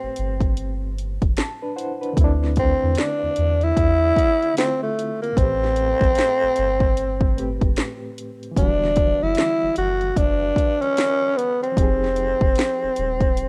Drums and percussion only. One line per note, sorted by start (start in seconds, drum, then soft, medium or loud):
0.16 closed hi-hat medium
0.40 kick medium
0.40 closed hi-hat soft
0.57 closed hi-hat medium
0.98 closed hi-hat medium
1.22 kick medium
1.22 closed hi-hat soft
1.37 snare loud
1.37 closed hi-hat medium
1.78 closed hi-hat medium
2.03 closed hi-hat soft
2.17 kick loud
2.17 closed hi-hat medium
2.44 snare soft
2.56 kick medium
2.56 closed hi-hat medium
2.95 snare loud
2.95 closed hi-hat medium
3.36 closed hi-hat medium
3.61 closed hi-hat soft
3.77 kick medium
3.77 closed hi-hat medium
4.16 kick medium
4.16 closed hi-hat medium
4.43 closed hi-hat soft
4.57 snare loud
4.57 closed hi-hat medium
4.99 closed hi-hat medium
5.24 closed hi-hat soft
5.37 kick loud
5.37 closed hi-hat medium
5.64 snare soft
5.76 closed hi-hat medium
6.01 kick loud
6.01 closed hi-hat soft
6.15 snare medium
6.15 closed hi-hat medium
6.56 closed hi-hat medium
6.80 kick medium
6.97 closed hi-hat medium
7.21 kick loud
7.38 closed hi-hat medium
7.61 kick medium
7.61 closed hi-hat soft
7.76 snare loud
7.76 closed hi-hat medium
8.18 closed hi-hat medium
8.43 closed hi-hat soft
8.57 kick loud
8.57 closed hi-hat medium
8.84 snare soft
8.96 kick medium
8.96 closed hi-hat medium
9.35 snare medium
9.35 closed hi-hat medium
9.76 closed hi-hat medium
10.01 closed hi-hat soft
10.16 kick medium
10.16 closed hi-hat medium
10.56 kick medium
10.56 closed hi-hat medium
10.82 closed hi-hat soft
10.97 snare loud
10.97 closed hi-hat medium
11.39 closed hi-hat medium
11.64 closed hi-hat soft
11.77 kick loud
11.77 closed hi-hat medium
12.04 snare soft
12.16 closed hi-hat medium
12.41 kick loud
12.55 snare loud
12.55 closed hi-hat medium
12.96 closed hi-hat medium
13.20 kick loud
13.20 closed hi-hat soft
13.37 closed hi-hat medium